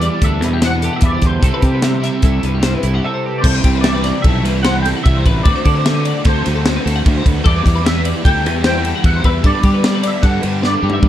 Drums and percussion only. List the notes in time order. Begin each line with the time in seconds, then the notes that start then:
0.02 closed hi-hat
0.22 kick, closed hi-hat
0.42 snare, closed hi-hat
0.62 snare, closed hi-hat
0.82 closed hi-hat
1.01 kick, closed hi-hat
1.22 kick, snare, closed hi-hat
1.43 kick, closed hi-hat
1.62 kick, closed hi-hat
1.82 snare, closed hi-hat
2.04 snare, closed hi-hat
2.22 kick, closed hi-hat
2.43 closed hi-hat
2.63 snare, closed hi-hat
2.83 closed hi-hat
3.44 kick, crash
3.64 kick, ride
3.84 snare, ride
4.04 snare, ride
4.24 kick, ride
4.45 snare, ride
4.64 snare, ride
4.85 snare, ride
5.06 kick, ride
5.26 kick, ride
5.45 kick, ride
5.65 kick, ride
5.86 snare, ride
6.05 ride
6.25 kick, snare, ride
6.46 snare, ride
6.65 snare, ride
6.87 snare, ride
7.06 kick, ride
7.26 kick, ride
7.46 kick, ride
7.66 kick, snare, ride
7.86 snare, ride
8.05 ride
8.25 kick, ride
8.46 ride
8.64 snare, ride
8.85 ride
9.04 kick, ride
9.24 kick, ride
9.44 kick, ride
9.63 kick, ride
9.84 snare, ride
10.03 snare, ride
10.23 kick, snare, ride
10.43 ride
10.63 snare
10.90 high tom
11.03 kick, mid tom